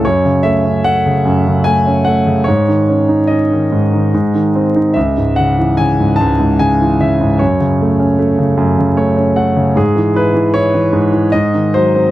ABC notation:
X:1
M:3/4
L:1/16
Q:1/4=74
K:C#m
V:1 name="Grand piano"
c2 e2 f4 g2 f2 | c4 d6 z2 | e2 f2 g2 a2 g2 e2 | c4 z4 c2 f2 |
G2 B2 c4 d2 ^B2 |]
V:2 name="Grand piano" clef=bass
F,, C, A, C A, C, F,, C, A, C A, C, | G,, D, C D C D, G,, D, G,, D, ^B, D | C,, G,, C, E, C, G,, C,, G,, C, E, C, G,, | F,, C, A, C A, C, F,, C, A, C A, C, |
G,, E, E E, E E, G,, E, G,, D, F, ^B, |]